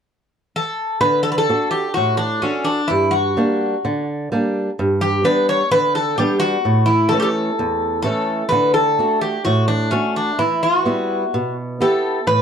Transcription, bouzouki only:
0.56 1.00 A4 medium
1.01 1.23 B4 medium
1.23 1.31 A4 medium
1.32 1.38 B4 medium
1.38 1.70 A4 medium
1.71 1.93 G4 medium
1.94 2.17 F#4 medium
2.17 2.40 D4 medium
2.42 2.67 C#4 medium
2.65 2.87 D4 medium
2.88 3.13 E4 medium
3.11 4.02 F#4 medium
5.01 5.23 G4 medium
5.25 5.46 B4 medium
5.49 5.71 C#5 medium
5.72 5.95 B4 loud
5.95 6.17 A4 medium
6.18 6.39 G4 medium
6.40 6.84 F#4 medium
6.86 7.11 E4 medium
7.09 7.17 A4 medium
7.20 7.26 G4 medium
7.20 8.00 A4 medium
8.02 8.47 A4 medium
8.49 8.72 B4 medium
8.74 9.18 A4 medium
9.21 9.44 G4 medium
9.45 9.68 F#4 medium
9.68 9.90 D4 medium
9.91 10.14 C#4 medium
10.16 10.38 D4 medium
10.39 10.61 E4 medium
10.63 11.53 F#4 medium
11.82 12.27 A4 medium
12.27 12.42 B4 medium

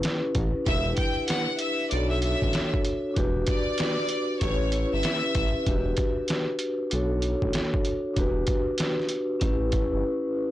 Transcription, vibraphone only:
0.00 0.68 C#4 medium
0.00 0.66 E4 medium
0.00 0.68 G4 medium
0.00 0.69 B4 medium
0.65 1.56 D4 medium
0.65 1.57 E4 medium
0.65 1.58 G4 medium
0.69 1.58 B4 medium
1.90 2.17 D4 medium
1.90 2.18 F#4 medium
1.90 2.19 A4 medium
1.95 2.20 C#5 medium
2.21 2.90 D4 medium
2.21 2.91 F#4 medium
2.21 2.91 A4 medium
2.25 2.92 C#5 medium
3.14 4.06 D4 medium
3.14 4.07 F#4 medium
3.14 4.07 G4 medium
3.19 4.08 B4 loud
4.40 4.67 C#4 medium
4.40 4.68 E4 medium
4.40 4.69 G4 medium
4.45 4.70 B4 medium
4.70 5.40 C#4 medium
4.70 5.40 E4 medium
4.70 5.41 G4 medium
4.75 5.42 B4 medium
5.65 6.56 D4 medium
5.65 6.57 F#4 medium
5.65 6.58 G4 medium
5.70 6.58 B4 medium
6.90 7.17 D4 medium
6.90 7.18 F#4 medium
6.90 7.19 A4 medium
6.95 7.20 C#5 medium
7.21 7.90 D4 medium
7.21 7.91 F#4 medium
7.21 7.91 A4 medium
7.26 7.92 C#5 medium
8.14 9.06 D4 medium
8.14 9.07 F#4 medium
8.14 9.07 G4 medium
8.19 9.08 B4 loud
9.40 9.67 C#4 medium
9.40 9.68 E4 medium
9.40 9.69 G4 medium
9.45 9.70 B4 medium
9.71 10.40 C#4 medium
9.71 10.41 E4 medium
9.71 10.41 G4 medium
9.75 10.42 B4 medium

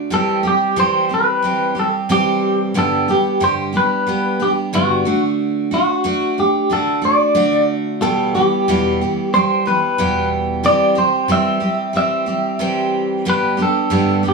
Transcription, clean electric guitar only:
0.14 0.43 A4 medium
0.47 0.79 G4 medium
0.80 1.09 C5 loud
1.14 1.79 B4 loud
1.79 1.88 A4 medium
2.12 2.58 G4 medium
2.79 3.10 A4 medium
3.11 3.43 G4 medium
3.44 3.52 C5 loud
3.77 4.43 B4 medium
4.42 4.51 G4 medium
4.75 5.21 F#4 medium
5.74 6.39 F#4 medium
6.40 6.72 G4 medium
6.73 7.05 A4 medium
7.05 7.65 D5 medium
8.02 8.35 A4 medium
8.35 9.29 G4 medium
9.34 9.64 C5 loud
9.67 10.28 B4 medium
10.66 10.98 D5 loud
10.98 11.31 C5 medium
11.32 11.92 E5 loud
11.97 12.91 E5 medium
13.30 13.59 B4 loud
13.62 14.22 A4 loud
14.29 14.34 G4 medium

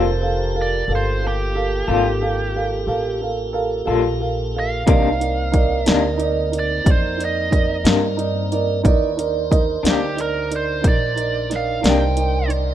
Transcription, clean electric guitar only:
0.00 0.10 G3 medium
0.00 0.10 A#3 medium
1.88 2.09 G3 soft
1.88 2.09 A#3 medium
1.88 2.09 F4 medium
1.88 2.08 A4 medium
3.87 4.08 G3 medium
3.87 4.08 A#3 medium
3.87 4.08 F4 medium
3.87 4.07 A4 medium
4.87 5.07 C3 medium
4.87 5.07 D#3 medium
4.87 5.08 A#3 medium
4.87 5.08 D4 medium
5.86 6.07 C3 medium
5.86 6.07 D#3 medium
5.86 6.07 A#3 medium
5.86 6.07 D4 medium
7.85 8.06 C3 soft
7.85 8.06 D#3 medium
7.85 8.05 A#3 medium
7.85 8.05 D4 medium
9.83 10.04 C3 medium
9.83 10.04 D#3 medium
9.83 10.04 A#3 soft
9.83 10.04 D4 medium
11.83 12.04 C3 soft
11.83 12.04 D#3 medium
11.83 12.04 A#3 medium
11.83 12.03 D4 medium

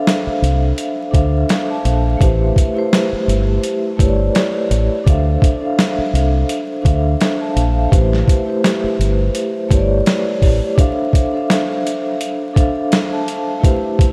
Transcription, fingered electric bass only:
0.27 muted fingered electric bass stroke soft
0.42 0.72 C2 medium
1.14 1.43 D2 medium
1.85 2.14 A#1 medium
2.21 2.50 A1 loud
3.12 muted fingered electric bass stroke soft
3.28 3.57 G1 medium
3.99 4.29 G1 medium
4.71 4.87 A1 medium
5.06 5.36 D2 loud
5.98 muted fingered electric bass stroke soft
6.13 6.43 C2 medium
6.85 7.14 D2 medium
7.56 7.86 A#1 loud
7.92 8.21 A1 loud
8.84 muted fingered electric bass stroke soft
8.99 9.29 G1 medium
9.71 10.00 G1 medium
10.42 10.59 A1 medium

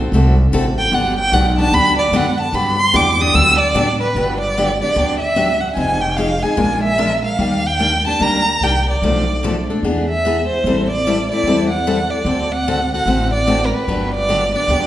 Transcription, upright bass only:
0.00 0.11 B1 medium
0.12 0.51 C2 loud
0.52 0.91 A1 medium
0.92 1.31 G1 medium
1.32 1.71 B1 loud
1.71 2.11 D2 medium
2.11 2.52 F#2 medium
2.53 2.93 G2 loud
2.94 3.34 E2 loud
3.34 3.74 D2 loud
3.75 4.14 A2 medium
4.15 4.80 G1 medium
4.96 5.61 D2 medium
5.77 6.42 F1 medium
6.57 7.23 A#1 medium
7.38 8.04 D#2 medium
8.20 8.55 D2 medium
8.61 8.95 C2 medium
9.02 9.67 B1 medium
9.83 10.48 E2 medium
10.64 11.29 A1 medium
11.43 12.09 E2 medium
12.24 12.90 D2 medium
13.05 13.71 A1 medium
13.88 14.53 G1 medium
14.68 14.87 D2 medium

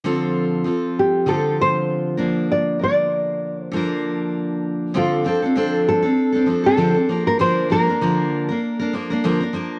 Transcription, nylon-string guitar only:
0.99 1.29 G4 medium
1.29 1.59 A4 medium
1.62 2.51 C5 medium
2.52 2.82 D5 medium
2.83 3.63 D5 medium
3.63 4.01 C5 medium
4.97 5.91 F4 medium
5.89 6.65 A4 medium
6.66 7.23 A4 medium
7.27 7.41 A#4 medium
7.41 7.71 C5 medium
7.72 8.60 A#4 medium

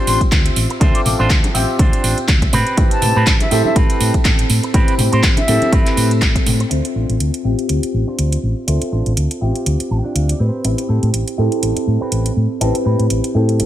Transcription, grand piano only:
0.00 0.78 C4 medium
0.00 0.79 F4 medium
0.00 0.79 G4 loud
0.00 0.78 E5 medium
0.80 1.52 C4 medium
0.80 1.52 F4 medium
0.80 1.53 A4 medium
0.80 1.52 E5 medium
1.54 2.52 C4 loud
1.54 2.52 F4 medium
1.54 2.52 G4 loud
1.54 2.52 E5 medium
2.77 3.48 C4 medium
2.77 3.49 E4 medium
2.77 3.49 G4 medium
2.77 3.49 B4 medium
3.51 4.71 C4 loud
3.51 4.72 E4 medium
3.51 4.72 G4 medium
3.51 4.72 A4 loud
4.74 5.45 C4 medium
4.74 5.45 E4 medium
4.74 5.46 G4 medium
4.74 5.46 B5 medium
5.47 6.68 C4 loud
5.47 6.68 E4 medium
5.47 6.69 G4 medium
5.47 6.69 A4 loud
6.70 7.42 C4 medium
6.70 7.42 F4 medium
6.70 7.43 A4 medium
6.70 7.42 E5 medium
7.44 8.65 C4 medium
7.44 8.65 F4 medium
7.44 8.66 G4 loud
7.44 8.65 E5 medium
8.67 9.39 C4 medium
8.67 9.39 F4 medium
8.67 9.39 A4 medium
8.67 9.39 E5 medium
9.41 10.38 C4 medium
9.41 10.39 F4 medium
9.41 10.39 G4 loud
9.41 10.39 E5 medium
10.64 11.35 C4 medium
10.64 11.36 E4 medium
10.64 11.36 G4 medium
10.64 11.36 B5 medium
11.37 12.58 C4 medium
11.37 12.58 E4 medium
11.37 12.59 G4 medium
11.37 12.59 A4 loud
12.60 13.32 C4 medium
12.60 13.32 E4 medium
12.60 13.33 G4 medium
12.60 13.33 B4 medium
13.34 13.66 C4 medium
13.34 13.66 E4 medium
13.34 13.66 G4 medium
13.34 13.66 A4 loud

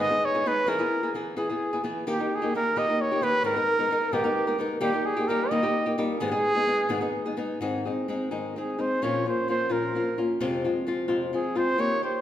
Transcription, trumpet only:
0.00 0.27 D#5 loud
0.25 0.49 C#5 medium
0.47 0.70 B4 loud
0.69 1.12 A#4 medium
1.38 1.88 G#4 medium
2.09 2.36 G4 medium
2.35 2.56 G#4 medium
2.56 2.80 A#4 loud
2.78 3.03 D#5 loud
3.01 3.25 C#5 medium
3.23 3.45 B4 loud
3.46 4.15 A#4 loud
4.13 4.65 G4 medium
4.82 5.07 G4 loud
5.06 5.30 G#4 medium
5.28 5.51 A#4 loud
5.50 5.94 D#5 loud
6.19 7.11 G#4 loud
8.58 8.82 G#4 medium
8.81 9.04 C5 medium
9.03 9.27 C#5 loud
9.29 9.48 C5 medium
9.50 9.73 C5 loud
9.72 10.24 A#4 medium
11.35 11.58 G#4 medium
11.57 11.82 C5 loud
11.80 12.04 C#5 loud
12.05 12.21 C5 medium

